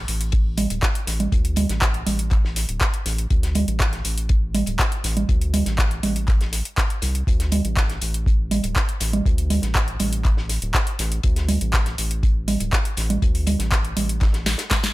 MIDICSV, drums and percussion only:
0, 0, Header, 1, 2, 480
1, 0, Start_track
1, 0, Tempo, 495868
1, 1280, Time_signature, 4, 2, 24, 8
1, 14456, End_track
2, 0, Start_track
2, 0, Title_t, "Drums"
2, 78, Note_on_c, 9, 42, 59
2, 79, Note_on_c, 9, 46, 105
2, 175, Note_off_c, 9, 42, 0
2, 176, Note_off_c, 9, 46, 0
2, 200, Note_on_c, 9, 42, 65
2, 297, Note_off_c, 9, 42, 0
2, 311, Note_on_c, 9, 42, 86
2, 319, Note_on_c, 9, 36, 111
2, 408, Note_off_c, 9, 42, 0
2, 416, Note_off_c, 9, 36, 0
2, 556, Note_on_c, 9, 42, 64
2, 558, Note_on_c, 9, 46, 99
2, 558, Note_on_c, 9, 64, 85
2, 653, Note_off_c, 9, 42, 0
2, 655, Note_off_c, 9, 46, 0
2, 655, Note_off_c, 9, 64, 0
2, 681, Note_on_c, 9, 42, 63
2, 686, Note_off_c, 9, 42, 0
2, 686, Note_on_c, 9, 42, 41
2, 783, Note_off_c, 9, 42, 0
2, 797, Note_on_c, 9, 38, 105
2, 799, Note_on_c, 9, 36, 112
2, 799, Note_on_c, 9, 39, 111
2, 801, Note_on_c, 9, 42, 79
2, 894, Note_off_c, 9, 38, 0
2, 896, Note_off_c, 9, 36, 0
2, 896, Note_off_c, 9, 39, 0
2, 898, Note_off_c, 9, 42, 0
2, 922, Note_on_c, 9, 42, 54
2, 1019, Note_off_c, 9, 42, 0
2, 1034, Note_on_c, 9, 38, 48
2, 1039, Note_on_c, 9, 42, 69
2, 1039, Note_on_c, 9, 46, 101
2, 1131, Note_off_c, 9, 38, 0
2, 1136, Note_off_c, 9, 42, 0
2, 1136, Note_off_c, 9, 46, 0
2, 1161, Note_on_c, 9, 42, 62
2, 1161, Note_on_c, 9, 64, 78
2, 1258, Note_off_c, 9, 42, 0
2, 1258, Note_off_c, 9, 64, 0
2, 1279, Note_on_c, 9, 36, 110
2, 1282, Note_on_c, 9, 42, 87
2, 1376, Note_off_c, 9, 36, 0
2, 1378, Note_off_c, 9, 42, 0
2, 1401, Note_on_c, 9, 42, 54
2, 1498, Note_off_c, 9, 42, 0
2, 1512, Note_on_c, 9, 42, 64
2, 1518, Note_on_c, 9, 46, 100
2, 1518, Note_on_c, 9, 64, 87
2, 1609, Note_off_c, 9, 42, 0
2, 1615, Note_off_c, 9, 46, 0
2, 1615, Note_off_c, 9, 64, 0
2, 1639, Note_on_c, 9, 38, 46
2, 1640, Note_on_c, 9, 42, 64
2, 1736, Note_off_c, 9, 38, 0
2, 1737, Note_off_c, 9, 42, 0
2, 1755, Note_on_c, 9, 38, 104
2, 1758, Note_on_c, 9, 39, 125
2, 1759, Note_on_c, 9, 36, 115
2, 1759, Note_on_c, 9, 42, 88
2, 1852, Note_off_c, 9, 38, 0
2, 1855, Note_off_c, 9, 39, 0
2, 1856, Note_off_c, 9, 36, 0
2, 1856, Note_off_c, 9, 42, 0
2, 1880, Note_on_c, 9, 42, 38
2, 1976, Note_off_c, 9, 42, 0
2, 1999, Note_on_c, 9, 46, 108
2, 1999, Note_on_c, 9, 64, 80
2, 2003, Note_on_c, 9, 42, 65
2, 2096, Note_off_c, 9, 46, 0
2, 2096, Note_off_c, 9, 64, 0
2, 2100, Note_off_c, 9, 42, 0
2, 2120, Note_on_c, 9, 42, 65
2, 2217, Note_off_c, 9, 42, 0
2, 2239, Note_on_c, 9, 42, 76
2, 2240, Note_on_c, 9, 36, 118
2, 2240, Note_on_c, 9, 39, 36
2, 2335, Note_off_c, 9, 42, 0
2, 2337, Note_off_c, 9, 36, 0
2, 2337, Note_off_c, 9, 39, 0
2, 2368, Note_on_c, 9, 38, 51
2, 2464, Note_off_c, 9, 38, 0
2, 2480, Note_on_c, 9, 46, 100
2, 2481, Note_on_c, 9, 42, 63
2, 2485, Note_on_c, 9, 38, 39
2, 2577, Note_off_c, 9, 46, 0
2, 2578, Note_off_c, 9, 42, 0
2, 2581, Note_off_c, 9, 38, 0
2, 2602, Note_on_c, 9, 42, 60
2, 2699, Note_off_c, 9, 42, 0
2, 2718, Note_on_c, 9, 38, 106
2, 2718, Note_on_c, 9, 42, 92
2, 2720, Note_on_c, 9, 36, 113
2, 2720, Note_on_c, 9, 39, 118
2, 2814, Note_off_c, 9, 42, 0
2, 2815, Note_off_c, 9, 38, 0
2, 2817, Note_off_c, 9, 36, 0
2, 2817, Note_off_c, 9, 39, 0
2, 2842, Note_on_c, 9, 42, 51
2, 2939, Note_off_c, 9, 42, 0
2, 2959, Note_on_c, 9, 38, 45
2, 2960, Note_on_c, 9, 46, 104
2, 2962, Note_on_c, 9, 42, 60
2, 3056, Note_off_c, 9, 38, 0
2, 3057, Note_off_c, 9, 46, 0
2, 3058, Note_off_c, 9, 42, 0
2, 3083, Note_on_c, 9, 42, 58
2, 3180, Note_off_c, 9, 42, 0
2, 3199, Note_on_c, 9, 42, 92
2, 3200, Note_on_c, 9, 36, 118
2, 3296, Note_off_c, 9, 42, 0
2, 3297, Note_off_c, 9, 36, 0
2, 3321, Note_on_c, 9, 38, 50
2, 3323, Note_on_c, 9, 42, 48
2, 3417, Note_off_c, 9, 38, 0
2, 3420, Note_off_c, 9, 42, 0
2, 3436, Note_on_c, 9, 42, 71
2, 3440, Note_on_c, 9, 46, 107
2, 3440, Note_on_c, 9, 64, 93
2, 3533, Note_off_c, 9, 42, 0
2, 3537, Note_off_c, 9, 46, 0
2, 3537, Note_off_c, 9, 64, 0
2, 3562, Note_on_c, 9, 42, 60
2, 3659, Note_off_c, 9, 42, 0
2, 3673, Note_on_c, 9, 38, 105
2, 3678, Note_on_c, 9, 42, 88
2, 3680, Note_on_c, 9, 36, 114
2, 3681, Note_on_c, 9, 39, 119
2, 3770, Note_off_c, 9, 38, 0
2, 3775, Note_off_c, 9, 42, 0
2, 3776, Note_off_c, 9, 36, 0
2, 3778, Note_off_c, 9, 39, 0
2, 3796, Note_on_c, 9, 38, 43
2, 3802, Note_on_c, 9, 42, 37
2, 3893, Note_off_c, 9, 38, 0
2, 3899, Note_off_c, 9, 42, 0
2, 3917, Note_on_c, 9, 42, 67
2, 3919, Note_on_c, 9, 46, 113
2, 4014, Note_off_c, 9, 42, 0
2, 4016, Note_off_c, 9, 46, 0
2, 4042, Note_on_c, 9, 42, 62
2, 4139, Note_off_c, 9, 42, 0
2, 4155, Note_on_c, 9, 42, 80
2, 4159, Note_on_c, 9, 36, 119
2, 4252, Note_off_c, 9, 42, 0
2, 4256, Note_off_c, 9, 36, 0
2, 4400, Note_on_c, 9, 46, 106
2, 4400, Note_on_c, 9, 64, 94
2, 4403, Note_on_c, 9, 42, 65
2, 4497, Note_off_c, 9, 46, 0
2, 4497, Note_off_c, 9, 64, 0
2, 4500, Note_off_c, 9, 42, 0
2, 4514, Note_on_c, 9, 42, 39
2, 4522, Note_off_c, 9, 42, 0
2, 4522, Note_on_c, 9, 42, 62
2, 4619, Note_off_c, 9, 42, 0
2, 4639, Note_on_c, 9, 36, 119
2, 4639, Note_on_c, 9, 38, 116
2, 4640, Note_on_c, 9, 39, 117
2, 4644, Note_on_c, 9, 42, 91
2, 4736, Note_off_c, 9, 36, 0
2, 4736, Note_off_c, 9, 38, 0
2, 4737, Note_off_c, 9, 39, 0
2, 4741, Note_off_c, 9, 42, 0
2, 4762, Note_on_c, 9, 42, 45
2, 4859, Note_off_c, 9, 42, 0
2, 4880, Note_on_c, 9, 46, 108
2, 4881, Note_on_c, 9, 38, 44
2, 4882, Note_on_c, 9, 42, 67
2, 4977, Note_off_c, 9, 46, 0
2, 4978, Note_off_c, 9, 38, 0
2, 4979, Note_off_c, 9, 42, 0
2, 5002, Note_on_c, 9, 42, 60
2, 5002, Note_on_c, 9, 64, 84
2, 5099, Note_off_c, 9, 42, 0
2, 5099, Note_off_c, 9, 64, 0
2, 5119, Note_on_c, 9, 36, 112
2, 5121, Note_on_c, 9, 42, 88
2, 5216, Note_off_c, 9, 36, 0
2, 5217, Note_off_c, 9, 42, 0
2, 5242, Note_on_c, 9, 42, 49
2, 5338, Note_off_c, 9, 42, 0
2, 5359, Note_on_c, 9, 42, 66
2, 5360, Note_on_c, 9, 46, 101
2, 5360, Note_on_c, 9, 64, 94
2, 5456, Note_off_c, 9, 42, 0
2, 5457, Note_off_c, 9, 46, 0
2, 5457, Note_off_c, 9, 64, 0
2, 5475, Note_on_c, 9, 38, 46
2, 5482, Note_on_c, 9, 42, 58
2, 5572, Note_off_c, 9, 38, 0
2, 5578, Note_off_c, 9, 42, 0
2, 5599, Note_on_c, 9, 36, 116
2, 5599, Note_on_c, 9, 38, 106
2, 5600, Note_on_c, 9, 39, 118
2, 5604, Note_on_c, 9, 42, 85
2, 5696, Note_off_c, 9, 36, 0
2, 5696, Note_off_c, 9, 38, 0
2, 5696, Note_off_c, 9, 39, 0
2, 5701, Note_off_c, 9, 42, 0
2, 5721, Note_on_c, 9, 42, 35
2, 5818, Note_off_c, 9, 42, 0
2, 5839, Note_on_c, 9, 42, 64
2, 5840, Note_on_c, 9, 46, 109
2, 5840, Note_on_c, 9, 64, 85
2, 5935, Note_off_c, 9, 42, 0
2, 5937, Note_off_c, 9, 46, 0
2, 5937, Note_off_c, 9, 64, 0
2, 5962, Note_on_c, 9, 42, 60
2, 6059, Note_off_c, 9, 42, 0
2, 6078, Note_on_c, 9, 42, 81
2, 6079, Note_on_c, 9, 36, 122
2, 6081, Note_on_c, 9, 39, 35
2, 6174, Note_off_c, 9, 42, 0
2, 6176, Note_off_c, 9, 36, 0
2, 6178, Note_off_c, 9, 39, 0
2, 6202, Note_on_c, 9, 42, 34
2, 6206, Note_on_c, 9, 38, 49
2, 6299, Note_off_c, 9, 42, 0
2, 6302, Note_off_c, 9, 38, 0
2, 6315, Note_on_c, 9, 38, 35
2, 6318, Note_on_c, 9, 42, 68
2, 6319, Note_on_c, 9, 46, 100
2, 6412, Note_off_c, 9, 38, 0
2, 6415, Note_off_c, 9, 42, 0
2, 6416, Note_off_c, 9, 46, 0
2, 6441, Note_on_c, 9, 42, 58
2, 6538, Note_off_c, 9, 42, 0
2, 6559, Note_on_c, 9, 36, 117
2, 6559, Note_on_c, 9, 42, 87
2, 6560, Note_on_c, 9, 39, 112
2, 6563, Note_on_c, 9, 38, 111
2, 6656, Note_off_c, 9, 36, 0
2, 6656, Note_off_c, 9, 42, 0
2, 6657, Note_off_c, 9, 39, 0
2, 6660, Note_off_c, 9, 38, 0
2, 6681, Note_on_c, 9, 42, 46
2, 6778, Note_off_c, 9, 42, 0
2, 6795, Note_on_c, 9, 38, 46
2, 6795, Note_on_c, 9, 42, 67
2, 6800, Note_on_c, 9, 46, 101
2, 6892, Note_off_c, 9, 38, 0
2, 6892, Note_off_c, 9, 42, 0
2, 6896, Note_off_c, 9, 46, 0
2, 6921, Note_on_c, 9, 42, 55
2, 7018, Note_off_c, 9, 42, 0
2, 7039, Note_on_c, 9, 36, 110
2, 7045, Note_on_c, 9, 42, 90
2, 7136, Note_off_c, 9, 36, 0
2, 7142, Note_off_c, 9, 42, 0
2, 7162, Note_on_c, 9, 38, 49
2, 7162, Note_on_c, 9, 42, 51
2, 7259, Note_off_c, 9, 38, 0
2, 7259, Note_off_c, 9, 42, 0
2, 7277, Note_on_c, 9, 42, 66
2, 7280, Note_on_c, 9, 46, 105
2, 7280, Note_on_c, 9, 64, 91
2, 7374, Note_off_c, 9, 42, 0
2, 7377, Note_off_c, 9, 46, 0
2, 7377, Note_off_c, 9, 64, 0
2, 7402, Note_on_c, 9, 42, 58
2, 7499, Note_off_c, 9, 42, 0
2, 7517, Note_on_c, 9, 42, 81
2, 7519, Note_on_c, 9, 36, 117
2, 7520, Note_on_c, 9, 39, 110
2, 7524, Note_on_c, 9, 38, 108
2, 7614, Note_off_c, 9, 42, 0
2, 7616, Note_off_c, 9, 36, 0
2, 7617, Note_off_c, 9, 39, 0
2, 7621, Note_off_c, 9, 38, 0
2, 7643, Note_on_c, 9, 42, 36
2, 7645, Note_on_c, 9, 38, 45
2, 7740, Note_off_c, 9, 42, 0
2, 7741, Note_off_c, 9, 38, 0
2, 7758, Note_on_c, 9, 42, 68
2, 7760, Note_on_c, 9, 46, 99
2, 7855, Note_off_c, 9, 42, 0
2, 7857, Note_off_c, 9, 46, 0
2, 7882, Note_on_c, 9, 42, 58
2, 7979, Note_off_c, 9, 42, 0
2, 7999, Note_on_c, 9, 36, 117
2, 8008, Note_on_c, 9, 42, 77
2, 8096, Note_off_c, 9, 36, 0
2, 8105, Note_off_c, 9, 42, 0
2, 8240, Note_on_c, 9, 46, 95
2, 8240, Note_on_c, 9, 64, 91
2, 8244, Note_on_c, 9, 42, 69
2, 8337, Note_off_c, 9, 46, 0
2, 8337, Note_off_c, 9, 64, 0
2, 8341, Note_off_c, 9, 42, 0
2, 8359, Note_on_c, 9, 42, 45
2, 8362, Note_off_c, 9, 42, 0
2, 8362, Note_on_c, 9, 42, 60
2, 8459, Note_off_c, 9, 42, 0
2, 8480, Note_on_c, 9, 36, 112
2, 8480, Note_on_c, 9, 39, 107
2, 8483, Note_on_c, 9, 42, 83
2, 8490, Note_on_c, 9, 38, 106
2, 8576, Note_off_c, 9, 36, 0
2, 8577, Note_off_c, 9, 39, 0
2, 8580, Note_off_c, 9, 42, 0
2, 8586, Note_off_c, 9, 38, 0
2, 8602, Note_on_c, 9, 42, 46
2, 8699, Note_off_c, 9, 42, 0
2, 8717, Note_on_c, 9, 42, 69
2, 8719, Note_on_c, 9, 38, 47
2, 8719, Note_on_c, 9, 46, 105
2, 8813, Note_off_c, 9, 42, 0
2, 8816, Note_off_c, 9, 38, 0
2, 8816, Note_off_c, 9, 46, 0
2, 8841, Note_on_c, 9, 42, 55
2, 8841, Note_on_c, 9, 64, 88
2, 8938, Note_off_c, 9, 42, 0
2, 8938, Note_off_c, 9, 64, 0
2, 8960, Note_on_c, 9, 36, 110
2, 8965, Note_on_c, 9, 42, 89
2, 9056, Note_off_c, 9, 36, 0
2, 9062, Note_off_c, 9, 42, 0
2, 9081, Note_on_c, 9, 42, 50
2, 9178, Note_off_c, 9, 42, 0
2, 9199, Note_on_c, 9, 42, 71
2, 9199, Note_on_c, 9, 46, 95
2, 9199, Note_on_c, 9, 64, 85
2, 9296, Note_off_c, 9, 42, 0
2, 9296, Note_off_c, 9, 46, 0
2, 9296, Note_off_c, 9, 64, 0
2, 9314, Note_on_c, 9, 38, 42
2, 9322, Note_on_c, 9, 42, 59
2, 9411, Note_off_c, 9, 38, 0
2, 9419, Note_off_c, 9, 42, 0
2, 9435, Note_on_c, 9, 38, 115
2, 9440, Note_on_c, 9, 36, 106
2, 9440, Note_on_c, 9, 39, 113
2, 9445, Note_on_c, 9, 42, 85
2, 9532, Note_off_c, 9, 38, 0
2, 9536, Note_off_c, 9, 36, 0
2, 9537, Note_off_c, 9, 39, 0
2, 9542, Note_off_c, 9, 42, 0
2, 9562, Note_on_c, 9, 42, 39
2, 9659, Note_off_c, 9, 42, 0
2, 9676, Note_on_c, 9, 42, 68
2, 9680, Note_on_c, 9, 46, 102
2, 9680, Note_on_c, 9, 64, 82
2, 9773, Note_off_c, 9, 42, 0
2, 9777, Note_off_c, 9, 46, 0
2, 9777, Note_off_c, 9, 64, 0
2, 9802, Note_on_c, 9, 42, 62
2, 9898, Note_off_c, 9, 42, 0
2, 9919, Note_on_c, 9, 36, 112
2, 9920, Note_on_c, 9, 39, 33
2, 9920, Note_on_c, 9, 42, 83
2, 10016, Note_off_c, 9, 36, 0
2, 10016, Note_off_c, 9, 42, 0
2, 10017, Note_off_c, 9, 39, 0
2, 10040, Note_on_c, 9, 38, 51
2, 10137, Note_off_c, 9, 38, 0
2, 10157, Note_on_c, 9, 38, 39
2, 10159, Note_on_c, 9, 46, 93
2, 10164, Note_on_c, 9, 42, 61
2, 10254, Note_off_c, 9, 38, 0
2, 10256, Note_off_c, 9, 46, 0
2, 10261, Note_off_c, 9, 42, 0
2, 10281, Note_on_c, 9, 42, 59
2, 10378, Note_off_c, 9, 42, 0
2, 10399, Note_on_c, 9, 39, 106
2, 10400, Note_on_c, 9, 36, 104
2, 10401, Note_on_c, 9, 42, 84
2, 10403, Note_on_c, 9, 38, 109
2, 10496, Note_off_c, 9, 36, 0
2, 10496, Note_off_c, 9, 39, 0
2, 10497, Note_off_c, 9, 42, 0
2, 10500, Note_off_c, 9, 38, 0
2, 10520, Note_on_c, 9, 42, 49
2, 10617, Note_off_c, 9, 42, 0
2, 10639, Note_on_c, 9, 46, 97
2, 10640, Note_on_c, 9, 38, 46
2, 10640, Note_on_c, 9, 42, 70
2, 10736, Note_off_c, 9, 38, 0
2, 10736, Note_off_c, 9, 42, 0
2, 10736, Note_off_c, 9, 46, 0
2, 10761, Note_on_c, 9, 42, 59
2, 10858, Note_off_c, 9, 42, 0
2, 10875, Note_on_c, 9, 42, 94
2, 10879, Note_on_c, 9, 36, 103
2, 10972, Note_off_c, 9, 42, 0
2, 10976, Note_off_c, 9, 36, 0
2, 11000, Note_on_c, 9, 38, 48
2, 11000, Note_on_c, 9, 42, 54
2, 11097, Note_off_c, 9, 38, 0
2, 11097, Note_off_c, 9, 42, 0
2, 11118, Note_on_c, 9, 42, 67
2, 11118, Note_on_c, 9, 46, 97
2, 11118, Note_on_c, 9, 64, 82
2, 11215, Note_off_c, 9, 42, 0
2, 11215, Note_off_c, 9, 46, 0
2, 11215, Note_off_c, 9, 64, 0
2, 11240, Note_on_c, 9, 42, 63
2, 11337, Note_off_c, 9, 42, 0
2, 11358, Note_on_c, 9, 39, 114
2, 11359, Note_on_c, 9, 36, 105
2, 11359, Note_on_c, 9, 42, 84
2, 11362, Note_on_c, 9, 38, 110
2, 11455, Note_off_c, 9, 39, 0
2, 11455, Note_off_c, 9, 42, 0
2, 11456, Note_off_c, 9, 36, 0
2, 11459, Note_off_c, 9, 38, 0
2, 11475, Note_on_c, 9, 38, 46
2, 11481, Note_on_c, 9, 42, 39
2, 11572, Note_off_c, 9, 38, 0
2, 11578, Note_off_c, 9, 42, 0
2, 11599, Note_on_c, 9, 46, 99
2, 11601, Note_on_c, 9, 42, 67
2, 11696, Note_off_c, 9, 46, 0
2, 11697, Note_off_c, 9, 42, 0
2, 11721, Note_on_c, 9, 42, 63
2, 11818, Note_off_c, 9, 42, 0
2, 11839, Note_on_c, 9, 36, 108
2, 11841, Note_on_c, 9, 42, 74
2, 11936, Note_off_c, 9, 36, 0
2, 11938, Note_off_c, 9, 42, 0
2, 12080, Note_on_c, 9, 46, 96
2, 12080, Note_on_c, 9, 64, 88
2, 12081, Note_on_c, 9, 42, 65
2, 12176, Note_off_c, 9, 46, 0
2, 12176, Note_off_c, 9, 64, 0
2, 12178, Note_off_c, 9, 42, 0
2, 12198, Note_on_c, 9, 42, 43
2, 12202, Note_off_c, 9, 42, 0
2, 12202, Note_on_c, 9, 42, 64
2, 12298, Note_off_c, 9, 42, 0
2, 12319, Note_on_c, 9, 36, 109
2, 12319, Note_on_c, 9, 42, 90
2, 12320, Note_on_c, 9, 39, 110
2, 12322, Note_on_c, 9, 38, 114
2, 12416, Note_off_c, 9, 36, 0
2, 12416, Note_off_c, 9, 42, 0
2, 12417, Note_off_c, 9, 39, 0
2, 12419, Note_off_c, 9, 38, 0
2, 12441, Note_on_c, 9, 42, 53
2, 12538, Note_off_c, 9, 42, 0
2, 12554, Note_on_c, 9, 42, 63
2, 12559, Note_on_c, 9, 46, 101
2, 12566, Note_on_c, 9, 38, 49
2, 12651, Note_off_c, 9, 42, 0
2, 12656, Note_off_c, 9, 46, 0
2, 12663, Note_off_c, 9, 38, 0
2, 12681, Note_on_c, 9, 42, 64
2, 12681, Note_on_c, 9, 64, 83
2, 12778, Note_off_c, 9, 42, 0
2, 12778, Note_off_c, 9, 64, 0
2, 12799, Note_on_c, 9, 36, 106
2, 12800, Note_on_c, 9, 42, 91
2, 12896, Note_off_c, 9, 36, 0
2, 12897, Note_off_c, 9, 42, 0
2, 12921, Note_on_c, 9, 46, 59
2, 13018, Note_off_c, 9, 46, 0
2, 13036, Note_on_c, 9, 42, 74
2, 13040, Note_on_c, 9, 46, 96
2, 13040, Note_on_c, 9, 64, 82
2, 13132, Note_off_c, 9, 42, 0
2, 13137, Note_off_c, 9, 46, 0
2, 13137, Note_off_c, 9, 64, 0
2, 13157, Note_on_c, 9, 38, 42
2, 13163, Note_on_c, 9, 42, 65
2, 13254, Note_off_c, 9, 38, 0
2, 13259, Note_off_c, 9, 42, 0
2, 13276, Note_on_c, 9, 42, 90
2, 13279, Note_on_c, 9, 36, 113
2, 13280, Note_on_c, 9, 39, 119
2, 13282, Note_on_c, 9, 38, 106
2, 13373, Note_off_c, 9, 42, 0
2, 13376, Note_off_c, 9, 36, 0
2, 13377, Note_off_c, 9, 39, 0
2, 13378, Note_off_c, 9, 38, 0
2, 13402, Note_on_c, 9, 42, 42
2, 13499, Note_off_c, 9, 42, 0
2, 13520, Note_on_c, 9, 42, 61
2, 13520, Note_on_c, 9, 46, 100
2, 13520, Note_on_c, 9, 64, 77
2, 13616, Note_off_c, 9, 42, 0
2, 13617, Note_off_c, 9, 46, 0
2, 13617, Note_off_c, 9, 64, 0
2, 13642, Note_on_c, 9, 42, 69
2, 13739, Note_off_c, 9, 42, 0
2, 13756, Note_on_c, 9, 42, 75
2, 13759, Note_on_c, 9, 36, 111
2, 13761, Note_on_c, 9, 39, 35
2, 13770, Note_on_c, 9, 38, 96
2, 13853, Note_off_c, 9, 42, 0
2, 13856, Note_off_c, 9, 36, 0
2, 13857, Note_off_c, 9, 39, 0
2, 13866, Note_off_c, 9, 38, 0
2, 13875, Note_on_c, 9, 38, 53
2, 13882, Note_on_c, 9, 42, 38
2, 13971, Note_off_c, 9, 38, 0
2, 13979, Note_off_c, 9, 42, 0
2, 13998, Note_on_c, 9, 42, 69
2, 13999, Note_on_c, 9, 38, 60
2, 13999, Note_on_c, 9, 46, 98
2, 14000, Note_off_c, 9, 38, 0
2, 14000, Note_on_c, 9, 38, 107
2, 14095, Note_off_c, 9, 42, 0
2, 14096, Note_off_c, 9, 38, 0
2, 14096, Note_off_c, 9, 46, 0
2, 14113, Note_on_c, 9, 38, 91
2, 14120, Note_on_c, 9, 42, 81
2, 14123, Note_off_c, 9, 42, 0
2, 14123, Note_on_c, 9, 42, 62
2, 14210, Note_off_c, 9, 38, 0
2, 14219, Note_off_c, 9, 42, 0
2, 14235, Note_on_c, 9, 38, 107
2, 14237, Note_on_c, 9, 42, 83
2, 14239, Note_on_c, 9, 36, 109
2, 14240, Note_off_c, 9, 38, 0
2, 14240, Note_on_c, 9, 38, 71
2, 14240, Note_on_c, 9, 39, 112
2, 14334, Note_off_c, 9, 42, 0
2, 14336, Note_off_c, 9, 36, 0
2, 14337, Note_off_c, 9, 38, 0
2, 14337, Note_off_c, 9, 39, 0
2, 14357, Note_on_c, 9, 42, 78
2, 14359, Note_on_c, 9, 38, 95
2, 14362, Note_off_c, 9, 38, 0
2, 14362, Note_off_c, 9, 42, 0
2, 14362, Note_on_c, 9, 38, 71
2, 14362, Note_on_c, 9, 42, 50
2, 14456, Note_off_c, 9, 38, 0
2, 14456, Note_off_c, 9, 42, 0
2, 14456, End_track
0, 0, End_of_file